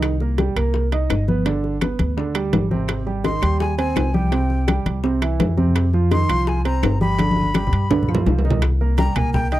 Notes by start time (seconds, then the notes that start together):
Already playing: C2 D#3 D#4
0.03 high bongo, high timbale, claves
0.20 A#3 A#4, high bongo, high conga
0.38 G3 G4, high bongo, high conga, high timbale
0.56 C2 A#3 A#4, high timbale, claves
0.74 high bongo, high conga
0.92 D#4 D#5, high bongo, high conga, high timbale
1.10 G1, high bongo, low bongo, high conga, high timbale, claves
1.28 B3 B4, high bongo, high conga
1.45 D3 D4, high bongo, high timbale
1.64 high bongo, high conga
1.81 B3 B4, high bongo, high conga, high timbale, claves
1.99 D2, high conga, high timbale
2.17 D3 D4, high bongo, high conga
2.35 G3 G4, high bongo, high conga, high timbale, claves
2.53 G#1, high bongo, low bongo, high conga, high timbale, low timbale
2.71 C3 C4, high bongo, high conga
2.88 high bongo, high conga, high timbale, claves
3.06 G3 G4, high bongo, high conga
3.24 D#3 D#4 C6, high bongo, high conga, high timbale
3.42 D#2 G3 G4, high timbale, claves
3.60 G#5, high bongo, high conga
3.78 C4 C5 G#5, high bongo, high conga, high timbale
3.96 C2, high bongo, low bongo, high conga, high timbale, low timbale, claves
4.14 G3 G4 G5, high bongo, high conga
4.32 C3 C4, high bongo, high timbale
4.50 high bongo, high conga
4.67 G3 G4, high bongo, high conga, high timbale, claves
4.86 C2, high conga, high timbale
5.03 C3 C4, high bongo, high conga
5.22 E3 E4, high bongo, high conga, high timbale, claves
5.40 F2, high bongo, low bongo, high conga, high timbale, low timbale
5.57 C3 C4, high bongo, high conga
5.75 high bongo, high timbale, claves
5.93 F3 F4, high bongo, high conga
6.11 D#3 D#4 C6, high bongo, high conga, high timbale
6.29 C2 F3 F4, high timbale, claves
6.47 G#5, high bongo, high conga
6.65 C4 C5 A#5, high bongo, high conga, high timbale
6.83 G1, high bongo, low bongo, high conga, high timbale, low timbale, claves
7.01 G3 G4 B5, high bongo, high conga
7.19 D3 D4, high bongo, high conga, high timbale
7.31 high conga
7.37 high bongo
7.43 high conga
7.54 G3 G4, high bongo, high conga, high timbale, claves
7.67 low conga
7.72 G2, high timbale
7.91 D3 D4, high bongo, low conga, high timbale
8.03 low conga
8.09 F3 F4, high bongo, claves
8.14 low conga, low timbale
8.26 C2, high bongo, low bongo, low conga, low timbale
8.39 low timbale
8.45 D#3 D#4, high bongo
8.50 low conga, low timbale
8.62 high bongo, high conga, high timbale, claves
8.81 A#3 A#4 A#5, high conga
8.98 G3 G4 G5 A#5, high bongo, high conga, high timbale, low timbale
9.16 C2 A#3 A#4 G#5 A#5, high bongo, high conga, low conga, high timbale, claves
9.34 G5, high bongo, high conga, low conga
9.52 D#4 D#5 G5 D#6, high bongo, high conga, high timbale